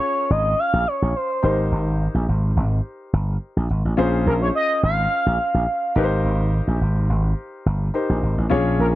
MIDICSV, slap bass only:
0, 0, Header, 1, 2, 480
1, 0, Start_track
1, 0, Tempo, 566038
1, 1454, Time_signature, 4, 2, 24, 8
1, 7591, End_track
2, 0, Start_track
2, 0, Title_t, "Slap bass"
2, 0, Program_c, 0, 36
2, 256, Note_on_c, 0, 32, 98
2, 451, Note_off_c, 0, 32, 0
2, 621, Note_on_c, 0, 34, 89
2, 714, Note_off_c, 0, 34, 0
2, 865, Note_on_c, 0, 34, 89
2, 956, Note_off_c, 0, 34, 0
2, 1215, Note_on_c, 0, 32, 104
2, 1411, Note_off_c, 0, 32, 0
2, 1455, Note_on_c, 0, 32, 86
2, 1755, Note_off_c, 0, 32, 0
2, 1818, Note_on_c, 0, 34, 100
2, 1912, Note_off_c, 0, 34, 0
2, 1937, Note_on_c, 0, 32, 83
2, 2132, Note_off_c, 0, 32, 0
2, 2173, Note_on_c, 0, 32, 86
2, 2370, Note_off_c, 0, 32, 0
2, 2655, Note_on_c, 0, 31, 93
2, 2851, Note_off_c, 0, 31, 0
2, 3023, Note_on_c, 0, 34, 86
2, 3115, Note_off_c, 0, 34, 0
2, 3138, Note_on_c, 0, 32, 87
2, 3240, Note_off_c, 0, 32, 0
2, 3264, Note_on_c, 0, 33, 90
2, 3355, Note_off_c, 0, 33, 0
2, 3375, Note_on_c, 0, 34, 103
2, 3571, Note_off_c, 0, 34, 0
2, 3615, Note_on_c, 0, 34, 93
2, 3811, Note_off_c, 0, 34, 0
2, 4095, Note_on_c, 0, 32, 105
2, 4291, Note_off_c, 0, 32, 0
2, 4463, Note_on_c, 0, 34, 86
2, 4555, Note_off_c, 0, 34, 0
2, 4700, Note_on_c, 0, 34, 86
2, 4793, Note_off_c, 0, 34, 0
2, 5051, Note_on_c, 0, 32, 101
2, 5248, Note_off_c, 0, 32, 0
2, 5293, Note_on_c, 0, 32, 88
2, 5593, Note_off_c, 0, 32, 0
2, 5659, Note_on_c, 0, 34, 101
2, 5752, Note_off_c, 0, 34, 0
2, 5774, Note_on_c, 0, 32, 84
2, 5970, Note_off_c, 0, 32, 0
2, 6015, Note_on_c, 0, 32, 81
2, 6211, Note_off_c, 0, 32, 0
2, 6495, Note_on_c, 0, 31, 90
2, 6691, Note_off_c, 0, 31, 0
2, 6864, Note_on_c, 0, 34, 86
2, 6955, Note_off_c, 0, 34, 0
2, 6975, Note_on_c, 0, 32, 88
2, 7079, Note_off_c, 0, 32, 0
2, 7103, Note_on_c, 0, 33, 91
2, 7195, Note_off_c, 0, 33, 0
2, 7216, Note_on_c, 0, 34, 105
2, 7411, Note_off_c, 0, 34, 0
2, 7457, Note_on_c, 0, 34, 100
2, 7591, Note_off_c, 0, 34, 0
2, 7591, End_track
0, 0, End_of_file